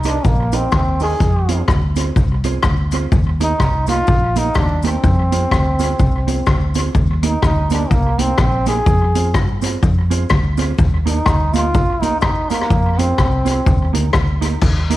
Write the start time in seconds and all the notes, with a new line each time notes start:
Already playing: C2
0.03 D#4 G4 A#4 D#5, closed hi-hat, cabasa
0.08 D4
0.24 A#1 A#3, kick, cabasa
0.52 C4 D#4 G4 A#4 D#5, closed hi-hat, cabasa
0.72 D#2 C4, kick, cross-stick, cabasa
1.00 D#4 G4 G#4 A#4 D#5, open hi-hat, cabasa
1.20 F2, kick, hi-hat pedal, cabasa
1.49 C4 F4 G#4 C5, closed hi-hat, cabasa
1.68 D2, kick, cross-stick, cabasa
1.96 C4 F4 G#4 C5, closed hi-hat, cabasa
2.16 C2, muted clean electric guitar stroke, kick, cabasa
2.44 C4 F4 G#4 C5, closed hi-hat, cabasa
2.63 D2, kick, cross-stick, cabasa
2.91 C4 F4 G#4 C5, closed hi-hat, cabasa
3.12 D#2, kick, cabasa
3.40 A#3 D#4 G4 A#4, closed hi-hat, cabasa
3.60 C2, kick, cross-stick, cabasa
3.87 A#3 D#4 F4 G4 A#4, closed hi-hat, cabasa
4.07 A#1, kick, cabasa
4.36 A#3 D#4 G4 A#4, closed hi-hat, cabasa
4.54 D#2 D4, kick, cross-stick, cabasa
4.82 A#3 C4 D#4 G4 A#4, closed hi-hat, cabasa
5.04 F2, kick, cabasa
5.32 C4 F4 G#4 C5, closed hi-hat, cabasa
5.51 D2, muted clean electric guitar stroke, kick, cross-stick, cabasa
5.79 C4 F4 G#4 C5, closed hi-hat, cabasa
5.99 C2, kick, cabasa
6.27 C4 F4 G#4 C5, closed hi-hat, cabasa
6.46 D2, kick, cross-stick, cabasa
6.74 C4 F4 G#4 C5, closed hi-hat, cabasa
6.95 D#2, kick, cabasa
7.23 A#3 D#4 G4 A#4, closed hi-hat, cabasa
7.42 D2 D#4, kick, cross-stick, cabasa
7.70 A#3 D4 D#4 G4 A#4, closed hi-hat, cabasa
7.91 C2 A#3, kick, cabasa
8.18 A#3 C4 D#4 G4 A#4, closed hi-hat, cabasa
8.38 A#1 C4, kick, cross-stick, cabasa
8.66 A#3 D#4 G4 G#4 A#4, closed hi-hat, cabasa
8.86 F2, kick, cabasa
9.15 C4 F4 G#4 C5, closed hi-hat, cabasa
9.34 G2, kick, cross-stick, cabasa
9.62 C4 F4 G#4 C5, closed hi-hat, cabasa
9.83 F2, muted clean electric guitar stroke, kick, cabasa
10.10 C4 F4 G#4 C5, closed hi-hat, cabasa
10.29 D2, kick, cross-stick, cabasa
10.57 C4 F4 G#4 C5, closed hi-hat, cabasa
10.78 D#2, kick, cabasa
11.06 A#3 D#4 G4 A#4, closed hi-hat, cabasa
11.26 D2, kick, cross-stick, cabasa
11.54 A#3 D#4 F4 G4 A#4, closed hi-hat, cabasa
11.74 C2, kick, cabasa
12.02 A#3 D#4 G4 A#4, closed hi-hat, cabasa
12.21 D#2 D#4, kick, cross-stick, cabasa
12.50 A#3 D#4 G4 A#4, closed hi-hat, cabasa
12.61 cross-stick
12.70 F2, kick, cabasa
12.98 C4 F4 G#4 C5, closed hi-hat, cabasa
13.18 C2, kick, cross-stick, cabasa
13.45 C4 F4 G#4 C5, closed hi-hat, cabasa
13.65 D#2, muted clean electric guitar stroke, kick, cabasa
13.93 D2 A#3 D#4 G4 A#4, closed hi-hat, cabasa
14.13 D2, kick, cross-stick, cabasa
14.41 A#3 D#4 G4 A#4, closed hi-hat, cabasa
14.61 D#2, kick, crash, cabasa
14.90 A#3 D#4 G4 A#4, closed hi-hat, cabasa